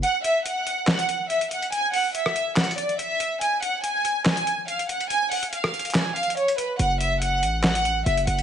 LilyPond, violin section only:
\new Staff \with { instrumentName = "Violin section" } { \time 4/4 \key fis \minor \tempo 4 = 142 fis''8 e''8 fis''4 fis''4 e''8 fis''8 | gis''8 fis''8 e''4 fis''8 d''8 e''4 | gis''8 fis''8 gis''4 gis''4 eis''8 fis''8 | gis''8 fis''8 eis''4 gis''8 eis''8 cis''8 b'8 |
fis''8 e''8 fis''4 fis''4 e''8 fis''8 | }